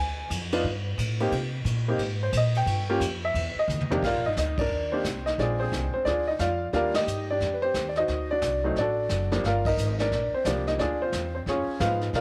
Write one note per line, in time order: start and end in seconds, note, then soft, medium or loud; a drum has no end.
0.00 0.29 D2 medium
0.00 0.29 G#5 loud
0.30 0.63 F2 loud
0.30 kick soft
0.30 hi-hat pedal medium
0.30 ride medium
0.52 0.64 B3 medium
0.52 0.64 D4 medium
0.52 0.64 D#4 medium
0.52 0.64 F4 medium
0.52 ride medium
0.64 0.97 G2 medium
0.64 kick soft
0.98 1.31 A2 medium
0.98 kick soft
0.98 hi-hat pedal medium
0.98 ride medium
1.20 1.31 A#3 medium
1.20 1.31 C4 medium
1.20 1.32 D#4 medium
1.20 1.32 G4 medium
1.20 ride medium
1.31 1.64 C3 medium
1.31 kick soft
1.31 ride medium
1.65 1.98 A#2 loud
1.65 kick soft
1.65 hi-hat pedal medium
1.65 ride medium
1.88 1.99 A#3 medium
1.88 1.99 C4 medium
1.88 1.99 D#4 medium
1.88 2.00 G4 medium
1.98 2.32 G#2 medium
1.98 kick soft
1.98 ride medium
2.23 2.34 C5 medium
2.33 2.65 A#2 loud
2.33 kick soft
2.33 hi-hat pedal medium
2.33 ride medium
2.37 2.56 D#5 medium
2.55 2.99 G5 medium
2.55 ride medium
2.66 2.99 G2 medium
2.66 kick soft
2.66 ride medium
2.90 3.00 A#3 medium
2.90 3.01 C#4 medium
2.90 3.01 F4 medium
2.90 3.01 G4 medium
3.00 3.33 F2 loud
3.00 kick soft
3.00 hi-hat pedal medium
3.00 ride medium
3.25 3.55 E5 medium
3.34 3.54 E2 medium
3.34 kick soft
3.34 ride medium
3.55 muted upright bass stroke soft
3.59 3.89 D#5 loud
3.68 3.88 D#2 loud
3.68 hi-hat pedal medium
3.68 high tom medium
3.81 high tom medium
3.90 4.02 C3 medium
3.90 4.02 A#3 medium
3.90 4.02 D4 medium
3.90 4.02 D#4 medium
3.90 4.02 G4 medium
3.90 muted upright bass stroke soft
3.90 floor tom loud
4.02 4.13 C2 medium
4.02 4.26 F5 loud
4.02 brush sweep soft
4.02 kick medium
4.02 snare soft
4.02 crash medium
4.06 4.25 F4 medium
4.06 4.25 A#4 medium
4.06 4.25 D5 medium
4.13 4.24 A#1 medium
4.24 4.35 G1 medium
4.24 4.38 D#4 medium
4.24 4.37 D#5 medium
4.36 4.69 D2 medium
4.36 4.59 D#5 medium
4.36 kick soft
4.36 snare medium
4.36 hi-hat pedal medium
4.40 4.59 D#4 medium
4.58 4.91 D4 medium
4.58 4.91 A#4 medium
4.58 4.90 D5 medium
4.58 kick medium
4.58 ride medium
4.70 5.03 D#2 medium
4.70 brush sweep soft
4.92 5.04 A#3 medium
4.92 5.25 C4 medium
4.92 5.04 D4 medium
4.92 5.04 D#4 medium
4.92 5.04 G4 medium
4.92 5.27 C5 medium
5.04 5.37 C2 medium
5.04 kick soft
5.04 snare medium
5.04 hi-hat pedal medium
5.26 5.38 D#4 medium
5.26 5.39 D#5 medium
5.26 snare soft
5.38 5.71 A#1 medium
5.38 6.33 G#3 medium
5.38 5.60 C4 medium
5.38 6.06 D4 medium
5.38 6.06 F4 medium
5.38 5.61 D5 medium
5.38 brush sweep soft
5.38 kick soft
5.38 snare soft
5.42 5.60 G#4 medium
5.60 5.92 C4 medium
5.60 5.92 G#4 medium
5.60 5.91 C5 medium
5.72 5.92 C2 medium
5.72 kick soft
5.72 snare medium
5.72 hi-hat pedal medium
5.94 6.06 C4 medium
5.94 6.06 C5 medium
6.05 6.39 D2 medium
6.05 6.26 D4 medium
6.05 6.27 F4 medium
6.05 6.27 G#4 medium
6.05 6.27 D5 loud
6.05 brush sweep soft
6.05 kick soft
6.05 snare soft
6.27 6.41 D#4 medium
6.27 6.40 D#5 medium
6.39 6.72 F2 medium
6.39 6.66 F4 medium
6.39 6.66 D5 medium
6.39 6.65 F5 medium
6.39 kick soft
6.39 snare medium
6.39 hi-hat pedal medium
6.73 7.06 D#2 medium
6.73 6.93 G3 medium
6.73 6.93 A#3 medium
6.73 6.93 D4 medium
6.73 6.93 F4 medium
6.73 6.95 A#4 medium
6.73 6.95 D5 medium
6.73 6.94 F5 medium
6.73 brush sweep soft
6.73 kick soft
6.73 snare soft
6.94 7.28 D#4 medium
6.94 7.27 G4 medium
6.94 7.27 D#5 loud
6.94 snare medium
6.94 ride medium
7.07 7.40 G2 medium
7.07 hi-hat pedal medium
7.30 7.54 D4 medium
7.30 7.54 G4 medium
7.30 7.55 D5 medium
7.40 7.74 F2 medium
7.40 brush sweep soft
7.40 kick soft
7.40 snare soft
7.54 7.63 B4 medium
7.62 7.86 C4 medium
7.62 7.87 G4 medium
7.62 7.85 C5 loud
7.74 8.07 D#2 medium
7.74 kick soft
7.74 snare medium
7.74 hi-hat pedal medium
7.89 7.97 D5 medium
7.96 8.29 D#4 medium
7.96 8.29 F#4 medium
7.96 8.29 C5 medium
7.96 8.32 D#5 loud
7.96 snare soft
8.08 8.41 D2 medium
8.08 brush sweep medium
8.08 kick soft
8.08 snare soft
8.31 8.63 D4 medium
8.31 8.63 F#4 medium
8.31 8.65 D5 loud
8.42 8.75 C2 medium
8.42 kick soft
8.42 snare medium
8.42 hi-hat pedal medium
8.64 8.75 F#3 medium
8.64 8.75 A3 medium
8.64 8.75 C4 medium
8.64 8.75 D#4 medium
8.64 8.77 C5 medium
8.76 9.09 A1 medium
8.76 9.29 D5 medium
8.76 brush sweep soft
8.76 kick soft
8.76 snare soft
8.80 9.30 D4 medium
8.80 9.29 F#4 medium
8.80 9.30 A4 medium
9.09 9.42 F#1 medium
9.09 kick soft
9.09 snare medium
9.09 hi-hat pedal soft
9.31 9.43 F3 medium
9.31 9.43 G3 medium
9.31 9.43 A#3 medium
9.31 9.43 D4 medium
9.31 snare soft
9.44 9.76 G1 medium
9.44 9.65 F4 medium
9.44 9.65 A#4 medium
9.44 9.65 D5 medium
9.44 9.67 F5 medium
9.44 brush sweep soft
9.44 kick soft
9.44 snare soft
9.65 9.98 D#4 medium
9.65 9.98 A#4 medium
9.65 10.00 D#5 medium
9.65 kick medium
9.65 ride medium
9.77 10.10 G#1 medium
9.77 hi-hat pedal medium
9.99 10.32 D4 medium
9.99 10.31 A#4 medium
9.99 10.31 D5 medium
9.99 snare soft
10.12 10.31 A#1 medium
10.12 brush sweep soft
10.12 kick soft
10.12 snare soft
10.33 10.46 C4 medium
10.33 10.46 C5 medium
10.33 muted upright bass stroke soft
10.45 10.78 C2 medium
10.45 10.79 F3 medium
10.45 10.79 G3 medium
10.45 10.80 A#3 medium
10.45 10.79 D4 medium
10.45 10.67 D5 medium
10.45 kick soft
10.45 snare medium
10.45 hi-hat pedal medium
10.67 10.79 D#4 medium
10.67 10.80 D#5 medium
10.67 snare soft
10.79 11.11 D2 medium
10.79 11.00 D4 medium
10.79 10.99 F4 medium
10.79 11.00 G#4 medium
10.79 11.01 D5 medium
10.79 brush sweep soft
10.79 kick soft
10.79 snare soft
11.02 11.33 C4 medium
11.02 11.33 F4 medium
11.02 11.33 C5 medium
11.12 11.45 E2 medium
11.12 kick soft
11.12 snare medium
11.12 hi-hat pedal medium
11.35 11.41 C4 medium
11.35 11.40 C5 medium
11.46 11.66 F2 medium
11.46 11.79 C#4 medium
11.46 11.79 F4 medium
11.46 11.79 G#4 medium
11.46 11.79 C#5 medium
11.46 brush sweep soft
11.46 kick soft
11.46 snare soft
11.67 muted upright bass stroke soft
11.80 12.13 G#2 medium
11.80 12.13 F3 medium
11.80 12.14 G#3 soft
11.80 12.14 B3 soft
11.80 12.14 D#4 medium
11.80 12.06 F4 medium
11.80 12.06 B4 medium
11.80 12.06 F5 medium
11.80 kick soft
11.80 snare medium
11.80 hi-hat pedal medium
12.01 snare soft
12.13 12.21 C3 medium
12.13 12.21 F4 medium
12.13 12.21 A#4 medium
12.13 12.21 D5 medium
12.13 12.21 F5 medium
12.13 brush sweep soft
12.13 kick soft
12.13 snare soft